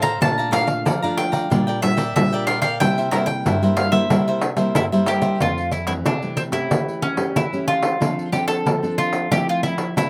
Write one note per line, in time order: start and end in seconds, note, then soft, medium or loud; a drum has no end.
0.00 0.18 A2 medium
0.00 0.19 A4 medium
0.00 0.19 C5 medium
0.00 0.18 F5 medium
0.00 0.21 A#5 loud
0.00 pandeiro medium
0.21 0.83 A#2 medium
0.21 0.49 A3 medium
0.21 0.49 D4 medium
0.21 0.49 F4 medium
0.21 0.36 A4 medium
0.21 0.36 D5 soft
0.21 0.37 F5 medium
0.21 0.52 A5 loud
0.21 0.37 A#5 medium
0.21 pandeiro medium
0.38 0.51 D5 medium
0.38 0.51 F5 medium
0.38 0.52 A#5 medium
0.38 pandeiro soft
0.51 0.83 A3 soft
0.51 0.84 D4 medium
0.51 0.84 F4 medium
0.51 0.66 A4 medium
0.51 0.66 D5 medium
0.51 0.66 F5 medium
0.51 1.14 F5 medium
0.51 0.67 A#5 medium
0.51 pandeiro medium
0.67 muted cavaquinho stroke soft
0.67 pandeiro medium
0.85 1.48 F3 medium
0.85 1.01 A4 medium
0.85 1.01 D5 medium
0.85 1.01 F5 medium
0.85 1.01 A#5 medium
0.85 pandeiro medium
1.02 1.46 A3 medium
1.02 1.47 D4 medium
1.02 1.47 F4 medium
1.02 1.32 D5 medium
1.02 1.32 F5 medium
1.02 1.31 A#5 medium
1.02 pandeiro soft
1.17 1.79 G5 medium
1.17 pandeiro medium
1.32 1.49 D5 medium
1.32 1.49 F5 medium
1.32 1.48 A#5 medium
1.32 pandeiro medium
1.50 2.13 A#2 medium
1.50 1.78 G3 medium
1.50 1.78 D4 medium
1.50 1.66 F4 soft
1.50 1.79 F4 medium
1.50 1.66 A#4 soft
1.50 1.66 D5 medium
1.50 1.66 G5 medium
1.50 pandeiro medium
1.67 1.81 A#4 medium
1.67 1.81 D5 medium
1.67 1.81 G5 medium
1.67 pandeiro soft
1.82 2.02 G3 soft
1.82 2.02 D4 medium
1.82 2.02 F4 medium
1.82 2.15 E5 medium
1.82 muted cavaquinho stroke soft
1.82 pandeiro medium
1.97 2.30 A#4 soft
1.97 2.30 D5 medium
1.97 2.29 G5 medium
1.97 pandeiro medium
2.16 2.78 A#2 medium
2.16 2.58 G3 soft
2.16 2.58 D4 medium
2.16 2.58 F4 medium
2.16 2.46 E5 medium
2.16 pandeiro medium
2.33 2.46 A#4 medium
2.33 2.47 D5 medium
2.33 2.47 G5 medium
2.33 pandeiro soft
2.47 2.62 F4 medium
2.47 2.62 A#4 medium
2.47 2.62 D5 medium
2.47 2.60 F5 medium
2.47 2.61 G5 medium
2.47 pandeiro medium
2.62 2.79 A#4 medium
2.62 2.79 D5 medium
2.62 2.80 F5 medium
2.62 2.78 G5 medium
2.62 pandeiro medium
2.80 3.42 C3 medium
2.80 3.08 G3 medium
2.80 3.08 A#3 medium
2.80 2.96 E4 soft
2.80 3.08 E4 medium
2.80 2.96 A#4 soft
2.80 2.96 C5 medium
2.80 2.96 E5 medium
2.80 3.11 G5 loud
2.80 pandeiro medium
2.98 3.11 A#4 soft
2.98 3.11 C5 medium
2.98 3.12 E5 medium
2.98 pandeiro soft
3.11 3.56 G3 medium
3.11 3.56 A#3 medium
3.11 3.26 E4 medium
3.11 3.56 E4 medium
3.11 3.26 A#4 medium
3.11 3.27 C5 medium
3.11 3.27 E5 medium
3.11 3.16 A#5 medium
3.11 pandeiro medium
3.26 3.76 G5 medium
3.26 muted cavaquinho stroke soft
3.26 pandeiro soft
3.45 4.07 G2 medium
3.45 3.61 E4 medium
3.45 3.61 A#4 medium
3.45 3.61 C5 medium
3.45 3.61 E5 medium
3.45 pandeiro medium
3.62 3.89 G3 medium
3.62 3.89 A#3 medium
3.62 3.90 E4 medium
3.62 3.92 A#4 medium
3.62 3.91 C5 medium
3.62 3.90 E5 medium
3.62 pandeiro soft
3.77 3.92 F5 medium
3.77 pandeiro medium
3.92 4.04 G3 medium
3.92 4.04 A#3 medium
3.92 4.04 E4 medium
3.92 4.09 A#4 medium
3.92 4.08 C5 medium
3.92 4.08 E5 medium
3.92 4.70 E5 medium
3.92 pandeiro soft
4.10 4.72 C3 medium
4.10 4.41 G3 medium
4.10 4.41 A#3 medium
4.10 4.25 E4 medium
4.10 4.41 E4 medium
4.10 4.26 A#4 medium
4.10 4.26 C5 medium
4.10 4.26 E5 medium
4.10 pandeiro medium
4.27 4.41 A#4 medium
4.27 4.41 C5 medium
4.27 4.41 E5 medium
4.27 pandeiro soft
4.41 muted cavaquinho stroke soft
4.41 pandeiro medium
4.56 4.85 G3 medium
4.56 4.85 A#3 medium
4.56 4.86 E4 medium
4.56 4.90 A#4 medium
4.56 4.90 C5 medium
4.56 4.89 E5 medium
4.56 pandeiro medium
4.75 5.37 G2 medium
4.75 4.85 E4 medium
4.75 pandeiro medium
4.92 5.35 G3 medium
4.92 5.36 A#3 medium
4.92 5.36 E4 medium
4.92 5.06 A#4 medium
4.92 5.06 C5 medium
4.92 5.07 E5 medium
4.92 pandeiro soft
5.06 5.22 E4 medium
5.06 5.41 G4 medium
5.06 5.22 A#4 medium
5.06 5.21 C5 medium
5.06 5.20 E5 medium
5.06 pandeiro medium
5.22 5.38 A#4 medium
5.22 5.38 C5 medium
5.22 5.38 E5 medium
5.22 pandeiro medium
5.40 6.02 F2 medium
5.40 5.71 A3 medium
5.40 5.71 C4 medium
5.40 5.71 F4 medium
5.40 pandeiro medium
5.58 pandeiro soft
5.71 5.86 E4 medium
5.71 pandeiro medium
5.87 6.15 E3 medium
5.87 6.15 A3 medium
5.87 6.16 C4 medium
5.87 5.92 E4 medium
5.87 pandeiro medium
6.05 6.67 C3 medium
6.05 6.39 D4 medium
6.05 pandeiro medium
6.22 6.49 E3 medium
6.22 6.50 A3 medium
6.22 6.50 C4 medium
6.22 pandeiro soft
6.37 6.42 C4 medium
6.37 pandeiro medium
6.52 7.13 A3 medium
6.52 7.13 C#4 medium
6.52 7.04 E4 medium
6.52 7.13 G4 medium
6.52 pandeiro medium
6.70 7.32 E3 medium
6.70 pandeiro medium
6.88 pandeiro soft
7.02 7.36 C#4 medium
7.02 pandeiro medium
7.17 7.45 A3 soft
7.17 7.46 C#4 medium
7.17 7.46 G4 medium
7.17 pandeiro medium
7.36 7.97 E3 medium
7.36 7.67 E4 medium
7.36 pandeiro medium
7.53 7.96 A3 medium
7.53 7.96 C#4 medium
7.53 7.96 G4 medium
7.53 pandeiro soft
7.67 8.29 F4 medium
7.67 pandeiro medium
7.83 pandeiro medium
8.00 8.62 F3 medium
8.00 8.28 C4 soft
8.00 8.28 D4 medium
8.00 8.28 A4 medium
8.00 pandeiro medium
8.19 pandeiro soft
8.32 8.76 C4 medium
8.32 8.77 D4 medium
8.32 8.47 G4 medium
8.32 8.77 A4 medium
8.32 pandeiro medium
8.48 8.94 A4 medium
8.48 pandeiro medium
8.66 9.28 F3 medium
8.66 pandeiro medium
8.83 9.26 C4 medium
8.83 9.26 D4 medium
8.83 9.27 A4 medium
8.83 pandeiro soft
8.98 9.31 F4 medium
8.98 pandeiro medium
9.13 pandeiro medium
9.31 9.93 F3 medium
9.31 9.73 A3 medium
9.31 9.74 C4 medium
9.31 9.74 E4 medium
9.31 9.47 G4 medium
9.31 pandeiro medium
9.49 9.63 F4 medium
9.49 pandeiro soft
9.63 9.94 E4 medium
9.63 pandeiro medium
9.78 pandeiro medium
9.96 10.10 C3 medium
9.96 10.10 A3 soft
9.96 10.10 C4 soft
9.96 10.10 E4 soft
9.96 10.10 E4 medium
9.96 pandeiro medium